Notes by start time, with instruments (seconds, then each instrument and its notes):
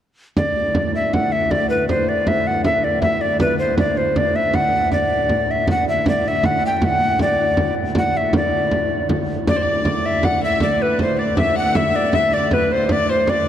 0.37 pipe organ D2 A2, recorder D5, frame drum
0.75 frame drum
0.95 recorder E5
1.13 recorder F#5, frame drum
1.32 recorder E5
1.51 recorder D5, frame drum
1.70 recorder B4
1.89 recorder C5, frame drum
2.09 recorder D5
2.27 recorder E5, frame drum
2.47 recorder F#5
2.64 recorder E5, frame drum
2.84 recorder D5
3.02 recorder E5, frame drum
3.21 recorder D5
3.40 recorder B4, frame drum
3.59 recorder C5
3.78 recorder D5, frame drum
3.97 recorder C5
4.16 recorder D5, frame drum
4.36 recorder E5, frame drum
4.54 recorder F#5, frame drum
4.73 frame drum
4.91 pipe organ D2 A2, recorder D5, frame drum
5.29 frame drum
5.51 recorder E5
5.67 recorder F#5, frame drum
5.89 recorder E5
6.06 recorder D5, frame drum
6.28 recorder E5
6.43 recorder F#5, frame drum
6.66 recorder G5
6.77 recorder G5
6.82 recorder F#5, frame drum
7.19 recorder D5, frame drum
7.57 frame drum
7.95 recorder F#5, frame drum
8.17 recorder E5
8.33 recorder D5, frame drum
8.71 frame drum
8.90 frame drum
9.09 frame drum
9.29 frame drum
9.47 pipe organ D2 A2, recorder D5, fiddle D5, frame drum
9.57 fiddle C5
9.62 fiddle D5
9.85 frame drum
10.06 recorder E5
10.23 fiddle F#5, recorder F#5, frame drum
10.43 fiddle E5, recorder E5
10.60 recorder D5, fiddle D5, frame drum
10.82 recorder B4, fiddle B4
10.99 fiddle C5, recorder C5, frame drum
11.18 fiddle D5, recorder D5
11.37 fiddle E5, recorder E5, frame drum
11.56 fiddle F#5, recorder F#5
11.75 fiddle E5, recorder E5, frame drum
11.96 recorder D5
12.13 fiddle E5, recorder E5, frame drum
12.34 fiddle D5, recorder D5
12.51 fiddle B4, recorder B4, frame drum
12.72 recorder C5, fiddle C5
12.89 fiddle D5, recorder D5, frame drum
13.08 fiddle C5, recorder C5, frame drum
13.27 fiddle D5, recorder D5, frame drum